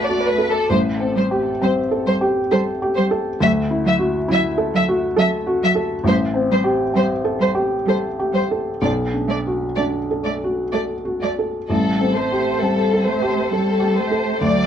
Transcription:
Already playing: felt piano B1 D4 F#4 A4, cello A3
0.03 violin section D5
0.09 felt piano F#4
0.26 violin section B4
0.38 felt piano A4
0.49 violin section A4
0.69 felt piano A1, cello G3, violin section C5
1.00 felt piano C4
1.16 cello G3, violin section C5
1.31 felt piano G4
1.61 cello G3, felt piano C4, violin section C5
1.91 felt piano A4
2.06 cello G3, violin section C5
2.21 felt piano G4
2.52 cello G3, felt piano A4, violin section C5
2.82 felt piano G4
2.96 cello G3, violin section C5
3.11 felt piano A4
3.41 felt piano D2, cello F#3, violin section E5
3.71 felt piano E4
3.85 cello F#3, violin section E5
3.99 felt piano F#4
4.28 cello F#3, felt piano E4, violin section E5
4.58 felt piano A4
4.74 cello F#3, violin section E5
4.89 felt piano F#4
5.17 cello F#3, felt piano A4, violin section E5
5.47 felt piano F#4
5.63 cello F#3, violin section E5
5.75 felt piano A4
6.04 felt piano A1, cello G3, violin section C5
6.34 felt piano C4
6.51 cello G3, violin section C5
6.64 felt piano G4
6.94 cello G3, felt piano C4, violin section C5
7.24 felt piano A4
7.39 cello G3, violin section C5
7.55 felt piano G4
7.86 cello G3, felt piano A4, violin section C5
8.19 felt piano G4
8.32 cello G3, violin section C5
8.51 felt piano A4
8.82 felt piano B1, cello A3, violin section D5
9.14 felt piano D4
9.28 cello A3, violin section D5
9.47 felt piano F#4
9.76 cello A3, felt piano D4, violin section D5
10.11 felt piano A4
10.25 cello A3, violin section D5
10.44 felt piano F#4
10.73 cello A3, felt piano A4, violin section D5
11.05 felt piano F#4
11.22 cello A3, violin section D5
11.39 felt piano A4
11.70 felt piano A1, cello G3, violin section A4
12.01 felt piano C4
12.15 cello A3, violin section C5
12.32 felt piano G4
12.61 cello G3, felt piano C4, violin section A4
12.94 felt piano A4
13.05 cello A3, violin section C5
13.22 felt piano G4
13.53 cello G3, felt piano A4, violin section A4
13.80 felt piano G4
13.97 cello A3, violin section C5
14.11 felt piano A4
14.41 felt piano D2, cello F#3, violin section D5

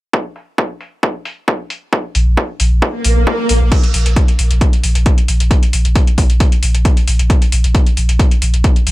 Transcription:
0.13 kick
0.36 open hi-hat
0.58 kick
0.81 open hi-hat
1.03 kick
1.25 open hi-hat
1.48 kick
1.70 open hi-hat
1.93 kick
2.15 sub bass A#1, open hi-hat
2.27 sub bass A#1
2.37 kick
2.60 sub bass A#1, open hi-hat
2.72 sub bass A#1
2.82 kick, swell
3.04 sub bass A#1, open hi-hat
3.16 sub bass A#1
3.27 kick
3.49 sub bass A#1, open hi-hat
3.61 sub bass A#1
3.72 kick, closed hi-hat, crash
3.83 closed hi-hat
3.94 sub bass A#1, open hi-hat
4.06 sub bass A#1, closed hi-hat
4.16 kick, closed hi-hat
4.28 closed hi-hat
4.39 sub bass A#1, open hi-hat
4.51 sub bass A#1, closed hi-hat
4.61 kick, closed hi-hat
4.73 closed hi-hat
4.83 sub bass A#1, open hi-hat
4.95 sub bass A#1, closed hi-hat
5.06 kick, closed hi-hat
5.18 closed hi-hat
5.28 sub bass A#1, open hi-hat
5.40 sub bass A#1, closed hi-hat
5.51 kick, closed hi-hat
5.63 closed hi-hat
5.73 sub bass A#1, open hi-hat
5.85 sub bass A#1, closed hi-hat
5.96 kick, closed hi-hat
6.07 closed hi-hat
6.18 sub bass A#1, kick, open hi-hat
6.30 sub bass A#1, closed hi-hat
6.40 kick, closed hi-hat
6.52 closed hi-hat
6.63 sub bass A#1, open hi-hat
6.75 sub bass A#1, closed hi-hat
6.85 kick, closed hi-hat
6.97 closed hi-hat
7.08 sub bass A#1, open hi-hat
7.19 sub bass A#1, closed hi-hat
7.30 kick, closed hi-hat
7.42 closed hi-hat
7.52 sub bass A#1, open hi-hat
7.64 sub bass A#1, closed hi-hat
7.75 kick, closed hi-hat
7.87 closed hi-hat
7.97 sub bass A#1, open hi-hat
8.09 sub bass A#1, closed hi-hat
8.19 kick, closed hi-hat
8.31 closed hi-hat
8.42 sub bass A#1, open hi-hat
8.54 sub bass A#1, closed hi-hat
8.64 kick, closed hi-hat
8.76 closed hi-hat
8.87 sub bass A#1, open hi-hat

